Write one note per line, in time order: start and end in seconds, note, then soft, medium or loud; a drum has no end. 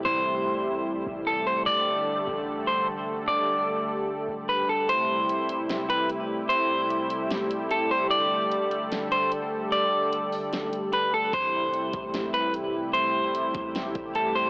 0.00 1.64 C3 medium
0.00 4.85 G3 medium
0.00 1.63 A3 medium
0.00 1.64 E4 medium
0.00 1.63 G4 medium
0.05 1.03 A1 loud
0.05 1.22 C5 loud
1.07 1.65 A1 loud
1.27 1.46 A4 medium
1.47 1.66 C5 medium
1.66 2.25 D1 loud
1.66 4.86 D3 medium
1.66 4.86 A3 medium
1.66 11.29 G4 medium
1.66 4.86 A4 medium
1.66 2.63 D5 loud
2.27 3.24 A1 loud
2.67 2.87 C5 medium
3.28 3.86 D1 loud
3.28 4.45 D5 loud
4.29 4.87 D1 loud
4.49 4.68 B4 medium
4.69 4.88 A4 medium
4.89 8.08 C3 medium
4.89 14.50 G3 medium
4.89 11.29 A3 medium
4.89 8.08 E4 medium
4.89 5.86 C5 loud
4.89 closed hi-hat medium
5.29 closed hi-hat medium
5.49 closed hi-hat medium
5.69 snare loud
5.69 closed hi-hat medium
5.90 6.09 B4 medium
5.90 closed hi-hat medium
6.10 closed hi-hat medium
6.49 7.66 C5 loud
6.49 closed hi-hat medium
6.90 closed hi-hat medium
7.10 closed hi-hat medium
7.31 snare loud
7.31 closed hi-hat medium
7.51 closed hi-hat medium
7.71 7.90 A4 medium
7.71 closed hi-hat medium
7.91 8.10 C5 medium
8.11 11.30 D3 medium
8.11 11.30 A4 medium
8.11 9.08 D5 loud
8.11 closed hi-hat medium
8.52 closed hi-hat medium
8.71 closed hi-hat medium
8.92 snare loud
8.92 closed hi-hat medium
9.12 9.31 C5 medium
9.12 closed hi-hat medium
9.32 closed hi-hat medium
9.72 10.89 D5 loud
9.72 closed hi-hat medium
10.13 closed hi-hat medium
10.32 open hi-hat medium
10.53 snare loud
10.53 closed hi-hat medium
10.73 closed hi-hat medium
10.93 11.12 B4 medium
10.93 closed hi-hat medium
11.14 11.33 A4 medium
11.33 11.72 A1 loud
11.33 14.50 C3 medium
11.33 14.50 A3 medium
11.33 14.50 E4 medium
11.33 14.50 G4 medium
11.33 12.30 C5 loud
11.33 kick loud
11.33 closed hi-hat medium
11.74 closed hi-hat medium
11.93 13.51 A1 loud
11.93 kick loud
11.93 closed hi-hat medium
12.14 snare loud
12.14 closed hi-hat medium
12.34 12.53 B4 medium
12.34 closed hi-hat medium
12.54 closed hi-hat medium
12.93 14.11 C5 loud
12.93 closed hi-hat medium
13.35 closed hi-hat medium
13.55 13.93 A1 loud
13.55 kick medium
13.55 closed hi-hat medium
13.75 snare loud
13.75 closed hi-hat medium
13.95 14.50 A1 loud
13.95 kick medium
13.95 closed hi-hat medium
14.15 14.34 A4 medium
14.15 closed hi-hat medium
14.35 14.50 C5 medium